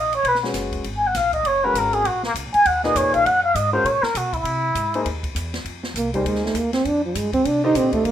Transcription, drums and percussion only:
0.13 ride soft
0.25 ride medium
0.35 snare soft
0.44 snare soft
0.54 snare soft
0.54 hi-hat pedal medium
0.54 ride medium
0.72 kick medium
0.72 ride soft
0.84 ride medium
1.14 snare soft
1.14 hi-hat pedal medium
1.14 ride medium
1.33 kick medium
1.33 ride soft
1.45 ride medium
1.75 hi-hat pedal medium
1.75 ride medium
1.93 ride soft
2.05 ride medium
2.23 snare medium
2.35 hi-hat pedal medium
2.35 ride medium
2.54 ride soft
2.65 ride medium
2.83 snare soft
2.96 hi-hat pedal medium
2.96 ride medium
3.14 ride soft
3.26 ride medium
3.55 hi-hat pedal medium
3.55 ride medium
3.86 ride medium
4.03 snare medium
4.15 hi-hat pedal medium
4.15 ride medium
4.33 kick medium
4.33 ride soft
4.45 ride medium
4.75 hi-hat pedal medium
4.75 ride medium
4.94 ride soft
5.06 ride medium
5.23 kick medium
5.23 ride soft
5.36 hi-hat pedal medium
5.36 ride medium
5.54 snare medium
5.54 ride soft
5.65 ride medium
5.83 snare medium
5.96 hi-hat pedal medium
5.96 ride medium
6.14 kick soft
6.14 ride soft
6.26 ride medium
6.35 snare soft
6.46 snare soft
6.55 hi-hat pedal medium
6.55 ride medium
6.73 snare medium
6.73 ride soft
6.85 ride medium
7.15 hi-hat pedal medium
7.15 ride medium
7.33 kick medium
7.33 ride soft
7.45 ride medium
7.75 hi-hat pedal medium
7.75 ride medium
7.93 kick medium
7.93 ride soft
8.05 ride medium

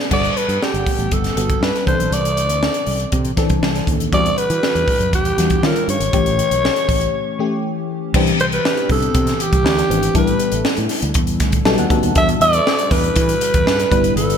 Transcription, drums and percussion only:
0.00 snare medium
0.11 kick loud
0.11 crash medium
0.24 closed hi-hat soft
0.37 closed hi-hat medium
0.49 closed hi-hat soft
0.63 snare loud
0.74 closed hi-hat soft
0.86 kick medium
0.86 open hi-hat medium
1.00 closed hi-hat soft
1.11 kick medium
1.11 closed hi-hat medium
1.24 snare soft
1.24 closed hi-hat medium
1.37 closed hi-hat medium
1.50 kick medium
1.50 closed hi-hat medium
1.63 snare loud
1.76 snare soft
1.76 closed hi-hat medium
1.87 kick loud
1.87 closed hi-hat medium
2.00 closed hi-hat medium
2.12 closed hi-hat medium
2.25 closed hi-hat medium
2.37 closed hi-hat medium
2.49 closed hi-hat medium
2.63 snare loud
2.74 closed hi-hat soft
2.86 open hi-hat medium
3.00 closed hi-hat medium
3.12 kick loud
3.12 closed hi-hat medium
3.25 closed hi-hat soft
3.37 kick loud
3.37 snare soft
3.37 closed hi-hat medium
3.50 kick medium
3.50 closed hi-hat medium
3.63 snare loud
3.75 snare soft
3.75 closed hi-hat soft
3.87 kick medium
3.87 closed hi-hat medium
4.00 closed hi-hat medium
4.13 kick loud
4.13 closed hi-hat medium
4.26 closed hi-hat medium
4.38 closed hi-hat medium
4.50 closed hi-hat soft
4.63 snare loud
4.75 closed hi-hat soft
4.88 kick medium
4.88 open hi-hat medium
5.01 closed hi-hat medium
5.13 kick loud
5.13 closed hi-hat medium
5.25 closed hi-hat medium
5.38 snare soft
5.38 closed hi-hat medium
5.50 kick medium
5.50 closed hi-hat medium
5.63 snare loud
5.76 closed hi-hat medium
5.89 closed hi-hat medium
6.00 closed hi-hat medium
6.13 kick loud
6.13 closed hi-hat medium
6.26 closed hi-hat medium
6.39 closed hi-hat medium
6.51 closed hi-hat medium
6.65 snare loud
6.76 closed hi-hat soft
6.89 kick medium
6.89 open hi-hat medium
7.01 closed hi-hat medium
8.14 kick loud
8.14 crash medium
8.27 closed hi-hat medium
8.40 closed hi-hat medium
8.52 closed hi-hat medium
8.65 snare loud
8.77 closed hi-hat medium
8.90 kick medium
8.90 open hi-hat medium
9.02 closed hi-hat medium
9.15 kick loud
9.15 closed hi-hat medium
9.27 snare soft
9.27 closed hi-hat medium
9.40 closed hi-hat medium
9.53 kick loud
9.53 closed hi-hat medium
9.66 snare loud
9.79 snare soft
9.79 closed hi-hat medium
9.91 closed hi-hat medium
10.03 closed hi-hat medium
10.15 kick loud
10.15 closed hi-hat medium
10.27 closed hi-hat medium
10.39 closed hi-hat medium
10.52 closed hi-hat soft
10.65 snare loud
10.77 closed hi-hat soft
10.89 snare soft
10.89 open hi-hat medium
11.02 closed hi-hat medium
11.14 kick loud
11.14 closed hi-hat medium
11.27 closed hi-hat medium
11.40 kick loud
11.40 snare soft
11.40 closed hi-hat medium
11.52 kick medium
11.52 closed hi-hat medium
11.65 snare loud
11.78 closed hi-hat medium
11.90 kick medium
11.90 closed hi-hat medium
12.03 closed hi-hat medium
12.15 kick loud
12.15 closed hi-hat medium
12.29 closed hi-hat medium
12.41 closed hi-hat medium
12.53 closed hi-hat medium
12.67 snare loud
12.79 closed hi-hat medium
12.91 kick loud
12.91 snare soft
12.91 open hi-hat medium
13.04 closed hi-hat medium
13.16 kick loud
13.16 closed hi-hat medium
13.29 closed hi-hat medium
13.41 closed hi-hat medium
13.54 kick medium
13.54 closed hi-hat medium
13.67 snare loud
13.80 snare soft
13.80 closed hi-hat medium
13.92 kick loud
13.92 closed hi-hat medium
14.04 closed hi-hat medium
14.17 closed hi-hat medium
14.30 closed hi-hat medium

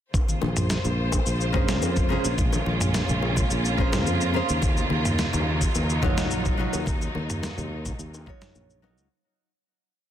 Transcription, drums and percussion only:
0.14 kick loud
0.14 high bongo medium
0.14 cabasa soft
0.29 high conga medium
0.29 cabasa soft
0.42 high bongo medium
0.42 high conga medium
0.57 mid tom medium
0.57 cabasa medium
0.70 snare medium
0.70 cabasa medium
0.85 high bongo soft
0.85 cabasa soft
1.12 kick medium
1.12 high bongo medium
1.12 cabasa medium
1.26 cabasa soft
1.41 cabasa soft
1.54 kick loud
1.54 mid tom medium
1.54 high bongo soft
1.69 snare medium
1.69 cabasa medium
1.82 high bongo medium
1.82 cabasa medium
1.96 kick medium
1.96 cabasa soft
2.10 low conga medium
2.24 high bongo soft
2.24 cabasa medium
2.38 kick loud
2.38 low conga medium
2.38 cabasa medium
2.52 high bongo medium
2.52 high conga medium
2.52 cabasa soft
2.66 high conga medium
2.81 mid tom medium
2.81 cabasa medium
2.94 snare medium
2.94 high bongo medium
2.94 cabasa medium
3.08 low conga medium
3.08 cabasa soft
3.22 high bongo medium
3.36 kick medium
3.36 low conga medium
3.36 cabasa medium
3.51 cabasa soft
3.64 high bongo soft
3.64 cabasa soft
3.78 kick loud
3.92 snare medium
3.92 mid tom medium
3.92 high bongo medium
3.92 cabasa medium
4.07 cabasa medium
4.21 cabasa soft
4.35 high bongo soft
4.49 cabasa medium
4.62 kick loud
4.62 high bongo medium
4.62 cabasa medium
4.77 high conga medium
4.77 cabasa soft
4.90 high conga medium
5.05 mid tom medium
5.05 high bongo soft
5.05 cabasa medium
5.19 snare medium
5.19 cabasa medium
5.33 high bongo medium
5.33 cabasa soft
5.61 kick medium
5.61 cabasa medium
5.75 high bongo soft
5.75 cabasa soft
5.90 cabasa soft
6.03 kick loud
6.03 mid tom medium
6.03 high bongo medium
6.18 snare medium
6.18 cabasa medium
6.31 cabasa medium
6.45 kick loud
6.45 high bongo soft
6.45 cabasa soft
6.60 low conga medium
6.73 high bongo medium
6.73 cabasa medium
6.86 kick loud
6.86 low conga medium
6.86 cabasa medium
7.01 high conga medium
7.01 cabasa soft
7.15 high bongo soft
7.15 high conga medium
7.30 mid tom medium
7.30 cabasa medium
7.43 snare medium
7.43 high bongo medium
7.43 cabasa medium
7.58 low conga medium
7.58 cabasa soft
7.86 kick medium
7.86 high bongo soft
7.86 low conga medium
7.86 cabasa medium
7.99 cabasa medium
8.14 high bongo medium
8.14 cabasa soft
8.27 kick loud
8.42 snare medium
8.42 mid tom medium
8.42 cabasa medium
8.55 high bongo soft
8.55 cabasa medium
8.70 cabasa soft
8.84 high bongo medium
8.98 cabasa medium

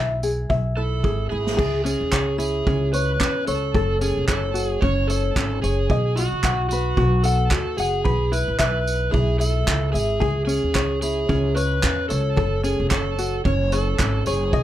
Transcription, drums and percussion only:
0.23 tambourine medium
0.50 kick loud
1.04 kick loud
1.47 snare loud
1.59 kick loud
1.59 crash medium
1.86 tambourine medium
2.13 kick loud
2.13 clap loud
2.40 tambourine medium
2.67 kick loud
2.94 tambourine medium
3.20 kick loud
3.20 clap loud
3.47 tambourine medium
3.74 kick loud
4.01 tambourine medium
4.28 kick loud
4.28 clap loud
4.55 tambourine medium
4.82 kick loud
5.10 tambourine medium
5.36 kick loud
5.36 clap loud
5.64 tambourine medium
5.90 kick loud
6.17 tambourine medium
6.44 kick loud
6.44 clap loud
6.71 tambourine medium
6.97 kick loud
7.24 tambourine medium
7.51 kick loud
7.51 clap loud
7.78 tambourine medium
8.05 kick loud
8.33 tambourine medium
8.60 kick loud
8.60 clap loud
8.87 tambourine medium
9.14 kick loud
9.41 tambourine medium
9.68 kick loud
9.68 clap loud
9.95 tambourine medium
10.22 kick loud
10.49 tambourine medium
10.75 kick loud
10.75 clap loud
11.02 tambourine medium
11.29 kick loud
11.57 tambourine medium
11.83 kick loud
11.83 clap loud
12.10 tambourine medium
12.37 kick loud
12.64 tambourine medium
12.91 kick loud
12.91 clap loud
13.19 tambourine medium
13.45 kick loud
13.72 tambourine medium
13.99 kick loud
13.99 clap loud
14.26 tambourine medium
14.53 kick loud

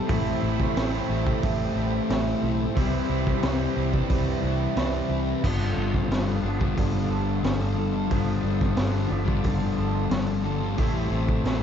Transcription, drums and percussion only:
0.09 kick loud
0.09 open hi-hat medium
0.60 kick medium
0.60 snare soft
0.77 snare loud
0.77 open hi-hat medium
1.27 kick medium
1.43 kick loud
1.43 open hi-hat medium
2.10 snare loud
2.10 open hi-hat medium
2.77 kick loud
2.77 open hi-hat medium
3.27 kick medium
3.27 snare soft
3.43 snare loud
3.43 open hi-hat medium
3.94 kick medium
4.10 kick loud
4.10 open hi-hat medium
4.77 snare loud
4.77 open hi-hat medium
5.44 kick loud
5.44 crash loud
5.94 kick medium
5.94 snare soft
6.11 snare loud
6.11 open hi-hat medium
6.61 kick medium
6.78 kick loud
6.78 open hi-hat medium
7.44 snare loud
7.44 open hi-hat medium
8.11 kick loud
8.11 open hi-hat medium
8.61 kick medium
8.61 snare soft
8.77 snare loud
8.77 open hi-hat medium
9.28 kick medium
9.44 kick loud
9.44 open hi-hat medium
10.11 snare loud
10.11 open hi-hat medium
10.78 kick loud
10.78 open hi-hat medium
11.29 kick medium
11.45 snare loud
11.45 open hi-hat medium

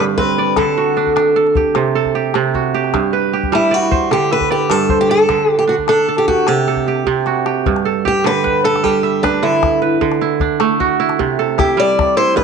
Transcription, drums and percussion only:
0.18 calabash thump medium
0.18 calabash click soft
0.47 calabash click soft
0.56 calabash thump medium
0.56 calabash click medium
0.96 calabash click soft
1.07 calabash thump soft
1.17 calabash click medium
1.47 calabash click soft
1.55 calabash thump medium
1.75 calabash click medium
2.05 calabash thump soft
2.05 calabash click soft
2.34 calabash click medium
2.54 calabash thump medium
2.54 calabash click soft
2.84 calabash click soft
2.94 calabash thump medium
2.94 calabash click medium
3.34 calabash click soft
3.43 calabash thump soft
3.53 calabash click medium
3.83 calabash click soft
3.92 calabash thump medium
4.12 calabash click medium
4.41 calabash thump soft
4.41 calabash click soft
4.70 calabash click medium
4.89 calabash thump medium
4.89 calabash click soft
5.19 calabash click soft
5.29 calabash thump medium
5.29 calabash click medium
5.39 calabash click soft
5.58 calabash click soft
5.78 calabash thump medium
5.78 calabash click soft
5.88 calabash click medium
6.28 calabash thump medium
6.28 calabash click soft
6.47 calabash click medium
6.67 calabash click soft
6.76 calabash thump soft
6.86 calabash click soft
6.96 calabash click soft
7.06 calabash thump soft
7.26 calabash click soft
7.46 calabash click medium
7.66 calabash thump medium
7.66 calabash click soft
7.76 calabash click soft
7.87 calabash click soft
8.06 calabash thump medium
8.26 calabash click medium
8.46 calabash thump medium
8.76 calabash click medium
8.85 calabash thump medium
9.24 calabash thump medium
9.24 calabash click medium
9.34 calabash click soft
9.52 calabash click soft
9.63 calabash thump medium
9.63 calabash click medium
10.01 calabash thump medium
10.01 calabash click soft
10.12 calabash click soft
10.21 calabash click soft
10.40 calabash thump medium
10.60 calabash click medium
10.80 calabash thump medium
11.09 calabash click medium
11.20 calabash thump medium
11.59 calabash thump medium
11.59 calabash click medium
11.69 calabash click soft
11.89 calabash click soft
11.99 calabash thump medium
11.99 calabash click medium
12.38 calabash thump medium
12.38 calabash click soft

